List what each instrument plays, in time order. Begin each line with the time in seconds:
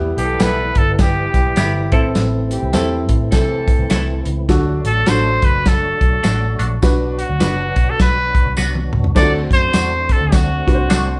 Already playing: fingered electric bass E2, tonewheel organ E3 G3 B3 E4, grand piano B3 E4 G4
0.17 fingered electric bass B1, horn section E3 B3 A4, trumpet G4, closed hi-hat
0.39 fingered electric bass B1, clean electric guitar G3 B3 E4 G4, grand piano B3 E4 A4, trumpet B4, snare, closed hi-hat, tambourine
0.75 fingered electric bass G1, trumpet A4, kick, closed hi-hat
0.94 trumpet A4
0.99 horn section E3 B3 G4, trumpet G4, kick, snare, closed hi-hat, tambourine
1.34 fingered electric bass B1, kick, snare, closed hi-hat
1.56 fingered electric bass G1, horn section C3 A3 E4, clean electric guitar G3 B3 E4 G4, snare, closed hi-hat, tambourine
1.92 fingered electric bass A1, clean electric guitar A3 C4 E4 A4, tonewheel organ A3 C4 E4, grand piano C4 E4 A4, kick, closed hi-hat
2.15 fingered electric bass A1, snare, closed hi-hat, tambourine
2.51 horn section E3 C4 G4, closed hi-hat
2.62 fingered electric bass C2
2.73 fingered electric bass E2, clean electric guitar A3 C4 E4 A4, grand piano C4 E4 A4, snare, closed hi-hat, tambourine
3.09 fingered electric bass A2, kick, closed hi-hat
3.32 fingered electric bass C3, horn section E3 C4 A4, kick, snare, closed hi-hat, tambourine
3.68 kick, closed hi-hat
3.79 fingered electric bass C2
3.90 fingered electric bass C2, clean electric guitar A3 C4 E4 A4, snare, closed hi-hat, tambourine
4.25 fingered electric bass C#2, closed hi-hat
4.49 fingered electric bass D2, tonewheel organ F#3 D4 F#4, grand piano D4 F#4 A4, kick, snare, closed hi-hat, tambourine
4.84 fingered electric bass A1, trumpet A4, closed hi-hat
5.06 fingered electric bass A1, clean electric guitar A3 D4 F#4 A4, grand piano D4 F#4 A4, trumpet C5, snare, closed hi-hat, tambourine
5.42 fingered electric bass F#1, trumpet B4, kick, closed hi-hat
5.66 trumpet A4, kick, snare, closed hi-hat, tambourine
6.01 fingered electric bass B1, kick, closed hi-hat
6.23 fingered electric bass A1, clean electric guitar A3 D4 F#4 A4, snare, closed hi-hat, tambourine
6.59 fingered electric bass A#1, clean electric guitar A3 D4 F#4 A4, closed hi-hat
6.82 fingered electric bass B1, tonewheel organ B3 D4, grand piano D4 F#4 B4, kick, snare, closed hi-hat, tambourine
7.19 trumpet F#4, closed hi-hat
7.29 fingered electric bass D2
7.40 fingered electric bass F#1, clean electric guitar B3 D4 F#4 B4, grand piano D4 F#4 B4, snare, closed hi-hat, tambourine
7.76 fingered electric bass B2, kick, closed hi-hat
7.90 trumpet A4
8.00 fingered electric bass B1, trumpet B4, kick, snare, closed hi-hat, tambourine
8.35 kick, closed hi-hat
8.46 fingered electric bass C2
8.57 fingered electric bass C2, clean electric guitar B3 D4 F#4 B4, snare, tambourine
8.75 high tom
8.93 fingered electric bass C#2, mid tom
9.04 floor tom
9.15 fingered electric bass D2, horn section F#3 D4 A4, tonewheel organ A3 C4 D4 F#4, grand piano D4 E4 C5, trumpet D5, kick, snare, crash, tambourine
9.22 grand piano F#4
9.51 fingered electric bass F#2, trumpet C5, kick, closed hi-hat
9.73 fingered electric bass E2, clean electric guitar A3 D4 F#4 C5, snare, closed hi-hat, tambourine
10.09 trumpet A4, kick, closed hi-hat
10.21 fingered electric bass D2
10.32 trumpet F#4, kick, snare, closed hi-hat, tambourine
10.67 fingered electric bass C2, grand piano D4 F#4 B4, kick, snare, closed hi-hat
10.75 grand piano C5
10.90 fingered electric bass C2, clean electric guitar A3 D4 F#4 C5, snare, closed hi-hat, tambourine